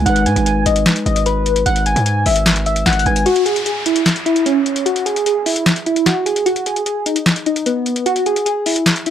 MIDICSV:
0, 0, Header, 1, 6, 480
1, 0, Start_track
1, 0, Tempo, 400000
1, 72, Time_signature, 4, 2, 24, 8
1, 10924, End_track
2, 0, Start_track
2, 0, Title_t, "Synth keys"
2, 0, Program_c, 0, 88
2, 69, Note_on_c, 0, 78, 108
2, 285, Note_off_c, 0, 78, 0
2, 314, Note_on_c, 0, 80, 88
2, 528, Note_off_c, 0, 80, 0
2, 549, Note_on_c, 0, 80, 85
2, 765, Note_off_c, 0, 80, 0
2, 792, Note_on_c, 0, 75, 72
2, 1007, Note_off_c, 0, 75, 0
2, 1274, Note_on_c, 0, 75, 84
2, 1488, Note_off_c, 0, 75, 0
2, 1514, Note_on_c, 0, 71, 89
2, 1964, Note_off_c, 0, 71, 0
2, 1992, Note_on_c, 0, 78, 112
2, 2206, Note_off_c, 0, 78, 0
2, 2235, Note_on_c, 0, 80, 84
2, 2448, Note_off_c, 0, 80, 0
2, 2469, Note_on_c, 0, 80, 83
2, 2685, Note_off_c, 0, 80, 0
2, 2715, Note_on_c, 0, 76, 88
2, 2928, Note_off_c, 0, 76, 0
2, 3197, Note_on_c, 0, 76, 73
2, 3409, Note_off_c, 0, 76, 0
2, 3432, Note_on_c, 0, 78, 98
2, 3647, Note_off_c, 0, 78, 0
2, 3676, Note_on_c, 0, 80, 88
2, 3889, Note_off_c, 0, 80, 0
2, 3912, Note_on_c, 0, 66, 107
2, 4126, Note_off_c, 0, 66, 0
2, 4147, Note_on_c, 0, 68, 81
2, 4364, Note_off_c, 0, 68, 0
2, 4391, Note_on_c, 0, 68, 84
2, 4606, Note_off_c, 0, 68, 0
2, 4632, Note_on_c, 0, 64, 75
2, 4847, Note_off_c, 0, 64, 0
2, 5111, Note_on_c, 0, 64, 84
2, 5326, Note_off_c, 0, 64, 0
2, 5352, Note_on_c, 0, 61, 86
2, 5803, Note_off_c, 0, 61, 0
2, 5829, Note_on_c, 0, 66, 98
2, 6045, Note_off_c, 0, 66, 0
2, 6071, Note_on_c, 0, 68, 82
2, 6286, Note_off_c, 0, 68, 0
2, 6315, Note_on_c, 0, 68, 77
2, 6528, Note_off_c, 0, 68, 0
2, 6553, Note_on_c, 0, 64, 82
2, 6767, Note_off_c, 0, 64, 0
2, 7038, Note_on_c, 0, 64, 81
2, 7250, Note_off_c, 0, 64, 0
2, 7276, Note_on_c, 0, 66, 94
2, 7488, Note_off_c, 0, 66, 0
2, 7511, Note_on_c, 0, 68, 77
2, 7726, Note_off_c, 0, 68, 0
2, 7752, Note_on_c, 0, 66, 104
2, 7967, Note_off_c, 0, 66, 0
2, 7997, Note_on_c, 0, 68, 82
2, 8209, Note_off_c, 0, 68, 0
2, 8232, Note_on_c, 0, 68, 83
2, 8446, Note_off_c, 0, 68, 0
2, 8472, Note_on_c, 0, 63, 67
2, 8686, Note_off_c, 0, 63, 0
2, 8956, Note_on_c, 0, 63, 83
2, 9169, Note_off_c, 0, 63, 0
2, 9194, Note_on_c, 0, 59, 86
2, 9644, Note_off_c, 0, 59, 0
2, 9672, Note_on_c, 0, 66, 105
2, 9886, Note_off_c, 0, 66, 0
2, 9914, Note_on_c, 0, 68, 81
2, 10128, Note_off_c, 0, 68, 0
2, 10147, Note_on_c, 0, 68, 84
2, 10364, Note_off_c, 0, 68, 0
2, 10394, Note_on_c, 0, 64, 86
2, 10607, Note_off_c, 0, 64, 0
2, 10878, Note_on_c, 0, 64, 74
2, 10924, Note_off_c, 0, 64, 0
2, 10924, End_track
3, 0, Start_track
3, 0, Title_t, "Tine electric piano"
3, 0, Program_c, 1, 4
3, 0, Control_c, 1, 64, 127
3, 24, Note_on_c, 1, 56, 67
3, 69, Note_on_c, 1, 63, 62
3, 86, Control_c, 1, 64, 0
3, 114, Note_on_c, 1, 71, 70
3, 325, Control_c, 1, 64, 127
3, 3600, Note_off_c, 1, 56, 0
3, 3623, Note_off_c, 1, 63, 0
3, 3645, Note_off_c, 1, 71, 0
3, 3648, Note_on_c, 1, 56, 50
3, 3671, Note_on_c, 1, 63, 43
3, 3693, Note_on_c, 1, 71, 56
3, 3900, Note_off_c, 1, 56, 0
3, 3912, Note_off_c, 1, 63, 0
3, 3923, Note_off_c, 1, 71, 0
3, 3927, Control_c, 1, 64, 0
3, 4105, Control_c, 1, 64, 127
3, 7766, Control_c, 1, 64, 0
3, 10924, End_track
4, 0, Start_track
4, 0, Title_t, "808-style bass"
4, 0, Program_c, 2, 38
4, 72, Note_on_c, 2, 32, 107
4, 311, Note_on_c, 2, 44, 101
4, 329, Note_off_c, 2, 32, 0
4, 426, Note_off_c, 2, 44, 0
4, 431, Note_on_c, 2, 32, 101
4, 777, Note_off_c, 2, 32, 0
4, 791, Note_on_c, 2, 32, 106
4, 1022, Note_off_c, 2, 32, 0
4, 1271, Note_on_c, 2, 32, 107
4, 1963, Note_off_c, 2, 32, 0
4, 1992, Note_on_c, 2, 32, 113
4, 2338, Note_off_c, 2, 32, 0
4, 2351, Note_on_c, 2, 44, 98
4, 2697, Note_off_c, 2, 44, 0
4, 2712, Note_on_c, 2, 32, 104
4, 3403, Note_off_c, 2, 32, 0
4, 3432, Note_on_c, 2, 32, 104
4, 3663, Note_off_c, 2, 32, 0
4, 3672, Note_on_c, 2, 32, 103
4, 3903, Note_off_c, 2, 32, 0
4, 10924, End_track
5, 0, Start_track
5, 0, Title_t, "Downlifter"
5, 0, Program_c, 3, 103
5, 3912, Note_on_c, 3, 60, 89
5, 7752, Note_off_c, 3, 60, 0
5, 10924, End_track
6, 0, Start_track
6, 0, Title_t, "Drums"
6, 73, Note_on_c, 9, 42, 70
6, 190, Note_off_c, 9, 42, 0
6, 190, Note_on_c, 9, 42, 59
6, 310, Note_off_c, 9, 42, 0
6, 313, Note_on_c, 9, 42, 66
6, 433, Note_off_c, 9, 42, 0
6, 435, Note_on_c, 9, 42, 60
6, 554, Note_off_c, 9, 42, 0
6, 554, Note_on_c, 9, 42, 75
6, 674, Note_off_c, 9, 42, 0
6, 792, Note_on_c, 9, 42, 89
6, 910, Note_off_c, 9, 42, 0
6, 910, Note_on_c, 9, 42, 74
6, 1030, Note_off_c, 9, 42, 0
6, 1031, Note_on_c, 9, 38, 118
6, 1031, Note_on_c, 9, 42, 83
6, 1151, Note_off_c, 9, 38, 0
6, 1151, Note_off_c, 9, 42, 0
6, 1151, Note_on_c, 9, 42, 54
6, 1271, Note_off_c, 9, 42, 0
6, 1274, Note_on_c, 9, 42, 58
6, 1392, Note_off_c, 9, 42, 0
6, 1392, Note_on_c, 9, 42, 63
6, 1512, Note_off_c, 9, 42, 0
6, 1512, Note_on_c, 9, 42, 67
6, 1632, Note_off_c, 9, 42, 0
6, 1752, Note_on_c, 9, 42, 64
6, 1872, Note_off_c, 9, 42, 0
6, 1872, Note_on_c, 9, 42, 62
6, 1992, Note_off_c, 9, 42, 0
6, 1992, Note_on_c, 9, 42, 70
6, 2110, Note_off_c, 9, 42, 0
6, 2110, Note_on_c, 9, 42, 57
6, 2230, Note_off_c, 9, 42, 0
6, 2232, Note_on_c, 9, 42, 66
6, 2352, Note_off_c, 9, 42, 0
6, 2354, Note_on_c, 9, 42, 57
6, 2472, Note_off_c, 9, 42, 0
6, 2472, Note_on_c, 9, 42, 76
6, 2592, Note_off_c, 9, 42, 0
6, 2711, Note_on_c, 9, 46, 85
6, 2828, Note_on_c, 9, 42, 76
6, 2831, Note_off_c, 9, 46, 0
6, 2948, Note_off_c, 9, 42, 0
6, 2951, Note_on_c, 9, 38, 116
6, 2951, Note_on_c, 9, 42, 81
6, 3071, Note_off_c, 9, 38, 0
6, 3071, Note_off_c, 9, 42, 0
6, 3071, Note_on_c, 9, 42, 55
6, 3191, Note_off_c, 9, 42, 0
6, 3194, Note_on_c, 9, 42, 56
6, 3312, Note_off_c, 9, 42, 0
6, 3312, Note_on_c, 9, 42, 62
6, 3432, Note_off_c, 9, 42, 0
6, 3432, Note_on_c, 9, 38, 78
6, 3432, Note_on_c, 9, 42, 59
6, 3513, Note_off_c, 9, 42, 0
6, 3513, Note_on_c, 9, 42, 61
6, 3552, Note_off_c, 9, 38, 0
6, 3592, Note_off_c, 9, 42, 0
6, 3592, Note_on_c, 9, 42, 64
6, 3672, Note_off_c, 9, 42, 0
6, 3672, Note_on_c, 9, 42, 46
6, 3792, Note_off_c, 9, 42, 0
6, 3792, Note_on_c, 9, 42, 72
6, 3912, Note_off_c, 9, 42, 0
6, 3912, Note_on_c, 9, 42, 68
6, 4030, Note_off_c, 9, 42, 0
6, 4030, Note_on_c, 9, 42, 56
6, 4150, Note_off_c, 9, 42, 0
6, 4152, Note_on_c, 9, 42, 64
6, 4272, Note_off_c, 9, 42, 0
6, 4274, Note_on_c, 9, 42, 56
6, 4392, Note_off_c, 9, 42, 0
6, 4392, Note_on_c, 9, 42, 74
6, 4512, Note_off_c, 9, 42, 0
6, 4630, Note_on_c, 9, 42, 84
6, 4749, Note_off_c, 9, 42, 0
6, 4749, Note_on_c, 9, 42, 74
6, 4869, Note_off_c, 9, 42, 0
6, 4871, Note_on_c, 9, 38, 110
6, 4871, Note_on_c, 9, 42, 81
6, 4991, Note_off_c, 9, 38, 0
6, 4991, Note_off_c, 9, 42, 0
6, 4991, Note_on_c, 9, 42, 52
6, 5111, Note_off_c, 9, 42, 0
6, 5114, Note_on_c, 9, 42, 53
6, 5232, Note_off_c, 9, 42, 0
6, 5232, Note_on_c, 9, 42, 61
6, 5352, Note_off_c, 9, 42, 0
6, 5353, Note_on_c, 9, 42, 68
6, 5473, Note_off_c, 9, 42, 0
6, 5592, Note_on_c, 9, 42, 62
6, 5712, Note_off_c, 9, 42, 0
6, 5712, Note_on_c, 9, 42, 58
6, 5832, Note_off_c, 9, 42, 0
6, 5833, Note_on_c, 9, 42, 68
6, 5951, Note_off_c, 9, 42, 0
6, 5951, Note_on_c, 9, 42, 55
6, 6071, Note_off_c, 9, 42, 0
6, 6074, Note_on_c, 9, 42, 64
6, 6194, Note_off_c, 9, 42, 0
6, 6196, Note_on_c, 9, 42, 58
6, 6314, Note_off_c, 9, 42, 0
6, 6314, Note_on_c, 9, 42, 74
6, 6434, Note_off_c, 9, 42, 0
6, 6553, Note_on_c, 9, 46, 82
6, 6672, Note_on_c, 9, 42, 73
6, 6673, Note_off_c, 9, 46, 0
6, 6792, Note_off_c, 9, 42, 0
6, 6793, Note_on_c, 9, 38, 110
6, 6793, Note_on_c, 9, 42, 78
6, 6913, Note_off_c, 9, 38, 0
6, 6913, Note_off_c, 9, 42, 0
6, 6913, Note_on_c, 9, 42, 52
6, 7033, Note_off_c, 9, 42, 0
6, 7036, Note_on_c, 9, 42, 54
6, 7154, Note_off_c, 9, 42, 0
6, 7154, Note_on_c, 9, 42, 60
6, 7274, Note_off_c, 9, 42, 0
6, 7274, Note_on_c, 9, 38, 77
6, 7274, Note_on_c, 9, 42, 67
6, 7394, Note_off_c, 9, 38, 0
6, 7394, Note_off_c, 9, 42, 0
6, 7514, Note_on_c, 9, 42, 63
6, 7634, Note_off_c, 9, 42, 0
6, 7634, Note_on_c, 9, 42, 60
6, 7753, Note_off_c, 9, 42, 0
6, 7753, Note_on_c, 9, 42, 67
6, 7872, Note_off_c, 9, 42, 0
6, 7872, Note_on_c, 9, 42, 54
6, 7992, Note_off_c, 9, 42, 0
6, 7994, Note_on_c, 9, 42, 63
6, 8114, Note_off_c, 9, 42, 0
6, 8115, Note_on_c, 9, 42, 57
6, 8234, Note_off_c, 9, 42, 0
6, 8234, Note_on_c, 9, 42, 72
6, 8354, Note_off_c, 9, 42, 0
6, 8473, Note_on_c, 9, 42, 80
6, 8590, Note_off_c, 9, 42, 0
6, 8590, Note_on_c, 9, 42, 77
6, 8710, Note_off_c, 9, 42, 0
6, 8712, Note_on_c, 9, 38, 109
6, 8712, Note_on_c, 9, 42, 82
6, 8832, Note_off_c, 9, 38, 0
6, 8832, Note_off_c, 9, 42, 0
6, 8833, Note_on_c, 9, 42, 53
6, 8953, Note_off_c, 9, 42, 0
6, 8955, Note_on_c, 9, 42, 56
6, 9073, Note_off_c, 9, 42, 0
6, 9073, Note_on_c, 9, 42, 63
6, 9193, Note_off_c, 9, 42, 0
6, 9193, Note_on_c, 9, 42, 69
6, 9313, Note_off_c, 9, 42, 0
6, 9433, Note_on_c, 9, 42, 60
6, 9552, Note_off_c, 9, 42, 0
6, 9552, Note_on_c, 9, 42, 59
6, 9672, Note_off_c, 9, 42, 0
6, 9672, Note_on_c, 9, 42, 68
6, 9791, Note_off_c, 9, 42, 0
6, 9791, Note_on_c, 9, 42, 55
6, 9911, Note_off_c, 9, 42, 0
6, 9914, Note_on_c, 9, 42, 62
6, 10034, Note_off_c, 9, 42, 0
6, 10035, Note_on_c, 9, 42, 57
6, 10154, Note_off_c, 9, 42, 0
6, 10154, Note_on_c, 9, 42, 73
6, 10274, Note_off_c, 9, 42, 0
6, 10392, Note_on_c, 9, 46, 85
6, 10511, Note_on_c, 9, 42, 73
6, 10512, Note_off_c, 9, 46, 0
6, 10631, Note_off_c, 9, 42, 0
6, 10632, Note_on_c, 9, 38, 115
6, 10632, Note_on_c, 9, 42, 82
6, 10752, Note_off_c, 9, 38, 0
6, 10752, Note_off_c, 9, 42, 0
6, 10752, Note_on_c, 9, 42, 54
6, 10872, Note_off_c, 9, 42, 0
6, 10874, Note_on_c, 9, 42, 54
6, 10924, Note_off_c, 9, 42, 0
6, 10924, End_track
0, 0, End_of_file